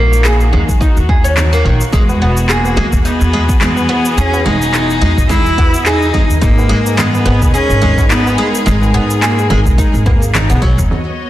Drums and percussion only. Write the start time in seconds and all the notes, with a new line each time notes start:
0.13 cabasa
0.25 clap, cabasa
0.41 cabasa
0.53 low conga
0.69 kick, cabasa
0.81 kick, cabasa
0.97 cabasa
1.09 kick
1.25 cabasa
1.37 clap, low conga, cabasa
1.53 cabasa
1.65 kick
1.81 cabasa
1.93 kick, low conga, cabasa
2.09 tabla na, cabasa
2.37 tabla tin, cabasa
2.49 clap, cabasa
2.65 tabla na, cabasa
2.77 low conga
2.93 kick, tabla na, tabla ge, cabasa
3.05 cabasa
3.21 cabasa
3.34 tabla ge
3.49 kick, tabla na, tabla tin, cabasa
3.61 clap, low conga, cabasa
3.77 tabla na, cabasa
4.05 tabla tin, cabasa
4.18 cabasa
4.33 tabla na, cabasa
4.46 low conga
4.62 tabla tin, cabasa
4.74 clap, cabasa
4.90 cabasa
5.17 kick, tabla na, tabla ge, cabasa
5.30 kick, low conga, cabasa
5.46 cabasa
5.58 kick, tabla na, tabla tin, tabla ge
5.74 cabasa
5.86 clap, cabasa
6.02 cabasa
6.14 kick, low conga
6.30 tabla ge, cabasa
6.42 kick, cabasa
6.58 tabla na, cabasa
6.86 tabla tin, cabasa
6.99 clap, low conga, cabasa
7.14 tabla na, cabasa
7.42 kick, tabla na, tabla ge, cabasa
7.55 cabasa
7.70 cabasa
7.83 low conga, tabla ge
7.98 kick, tabla na, tabla tin, cabasa
8.11 clap, cabasa
8.26 tabla na, cabasa
8.54 tabla tin, cabasa
8.67 low conga, cabasa
8.82 tabla na, cabasa
9.10 tabla tin, cabasa
9.23 clap, cabasa
9.39 tabla na, cabasa
9.51 low conga
9.66 kick, tabla na, tabla ge, cabasa
9.78 kick, cabasa
9.94 cabasa
10.06 kick, tabla na, tabla tin, tabla ge
10.22 cabasa
10.35 clap, low conga, cabasa
10.51 cabasa
10.62 kick, tabla tin
10.78 tabla ge, cabasa
10.91 low conga, cabasa
11.07 cabasa